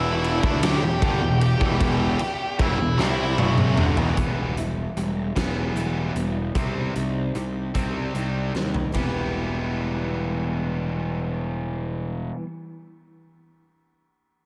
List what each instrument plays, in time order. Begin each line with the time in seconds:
Already playing: picked electric bass E1, distorted electric guitar E2 B2 E3, lead electric guitar E4 E5
0.24 ride
0.43 picked electric bass D2, distorted electric guitar D3 A3 D4, kick
0.63 lead electric guitar G4 G5, snare, ride
0.82 picked electric bass E1, distorted electric guitar E2 B2
1.02 picked electric bass G1, distorted electric guitar G2 D3, kick, ride
1.21 picked electric bass E1, distorted electric guitar E2 B2
1.41 lead electric guitar G4 G5, ride
1.60 picked electric bass E1, distorted electric guitar E2 B2 E3, kick
1.80 kick, ride
2.19 muted distorted electric guitar stroke, muted picked electric bass stroke, ride
2.59 picked electric bass F#1, distorted electric guitar F#2 C#3, lead electric guitar E4 E5, kick, ride
2.79 picked electric bass E1, distorted electric guitar E2 B2
2.99 picked electric bass C2, distorted electric guitar C3 G3 C4, lead electric guitar E4 E5, snare
3.38 picked electric bass F#1, distorted electric guitar F#2 C#3 F#3, high tom
3.58 lead electric guitar D5, mid tom
3.77 picked electric bass G1, distorted electric guitar G2 D3, mid tom
3.97 picked electric bass E1, distorted electric guitar E2 B2, floor tom
4.17 picked electric bass E1, distorted electric guitar E3 G3 B3, steel-string acoustic guitar E3, kick, closed hi-hat
4.57 distorted electric guitar E3 G3, steel-string acoustic guitar E4, closed hi-hat
4.97 picked electric bass E1, distorted electric guitar E3 G3, steel-string acoustic guitar G4, closed hi-hat
5.36 picked electric bass E1, distorted electric guitar E3 G3 B3, steel-string acoustic guitar B3, kick, snare, closed hi-hat
5.74 picked electric bass E1, steel-string acoustic guitar E4, closed hi-hat
6.14 picked electric bass E1, distorted electric guitar E3 G3, steel-string acoustic guitar B3, closed hi-hat
6.55 picked electric bass C2, distorted electric guitar C3 G3 C4, steel-string acoustic guitar C3, kick, closed hi-hat
6.95 picked electric bass C2, distorted electric guitar C3 G3, steel-string acoustic guitar D#4, closed hi-hat
7.35 picked electric bass C2, distorted electric guitar C3 G3, steel-string acoustic guitar G4, closed hi-hat
7.74 picked electric bass C2, distorted electric guitar C3 G3 C4, steel-string acoustic guitar C4, kick, closed hi-hat
8.15 picked electric bass C2, steel-string acoustic guitar D#4, closed hi-hat
8.54 picked electric bass D#2, distorted electric guitar C3 G3, steel-string acoustic guitar C4, snare
8.74 floor tom
8.92 picked electric bass E1, steel-string acoustic guitar E3 B3 E4 G4, distorted electric guitar E3 G3, kick, ride
8.96 distorted electric guitar B3 E4, steel-string acoustic guitar B4